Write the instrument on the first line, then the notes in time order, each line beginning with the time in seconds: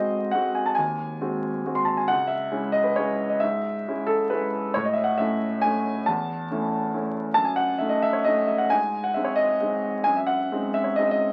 grand piano
Already playing: G#2 G#3 C4 F#4 C5 D#5
0.31 G#3 C4 F#4 F#5
0.55 G#5
0.66 A5
0.75 D#2 G#5
1.21 G#3 C4 F#4
1.65 G#3 C4 F#4
1.75 C6
1.85 A5
1.97 G#5
2.08 C#2 F#5
2.27 E5
2.51 G#3 C#4 E4
2.72 D#5
2.84 B4
2.96 G#3 C#4 E4 C#5
3.29 D#5
3.40 G#2 E5
3.88 G#3 C#4 E4
4.07 A4
4.30 G#3 C#4 E4 B4
4.74 A2 C#5
4.85 D#5
4.93 E5
5.04 F#5
5.18 A3 C#4 E4 E5
5.62 A3 C#4 E4 G#5
6.06 E2 A5
6.51 A3 C#4 E4
6.94 A3 C#4 E4
7.34 F#2 A5
7.45 G#5
7.56 F#5
7.78 A3 D#4 E5
7.89 D#5
8.02 E5
8.13 C#5
8.24 A3 D#4 D#5
8.47 E5
8.58 F#5
8.70 G#2 G#5
9.04 F#5
9.14 G#3 C4 D#4 E5
9.24 C#5
9.36 D#5
9.61 G#3 C4 D#4
10.04 F#2 G#5
10.16 E5
10.26 F#5
10.52 G#3 C4 D#4
10.74 E5
10.84 C#5
10.96 G#3 C4 D#4 D#5
11.07 E5
11.11 D#5